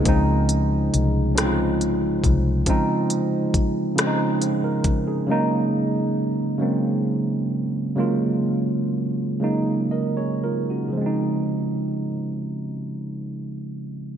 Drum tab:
HH |xxxxxx|xxxxxx|------|------|
SD |---r--|---r--|------|------|
BD |o----o|o-o--o|------|------|

HH |------|
SD |------|
BD |------|